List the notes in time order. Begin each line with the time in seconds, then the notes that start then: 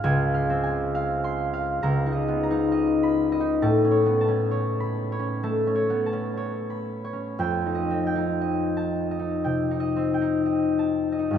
Already playing: F5 C6
0.04 C#2 G#5
0.34 F5
0.50 C4
0.63 G#5
0.95 F5
1.24 C6
1.54 F5
1.83 C#2 A#5
2.06 D#4
2.13 D#5
2.28 B3
2.43 A#5
2.51 D#4
2.72 D#5
3.03 B5
3.32 D#5
3.40 D#4
3.62 A2 A5
3.85 C#4
3.91 C#5
4.06 B3
4.21 A5
4.28 C#4
4.51 C#5
4.80 B5
5.12 C#5
5.19 C#4
5.43 A3 A5
5.67 C#4
5.75 C#5
5.90 B3
6.06 A5
6.13 C#4
6.37 C#5
6.70 B5
7.04 C#5
7.13 C#4
7.39 F2 G5
7.66 D#4
7.75 D#5
7.91 C4
8.07 G5
8.15 D#4
8.41 D#5
8.77 A5
9.11 D#5
9.19 D#4
9.44 C3 G5
9.71 D#4
9.80 D#5
9.96 C4
10.14 G5
10.21 D#4
10.46 D#5
10.79 A5
11.12 D#5
11.19 D#4
11.31 G2 G3
11.35 B3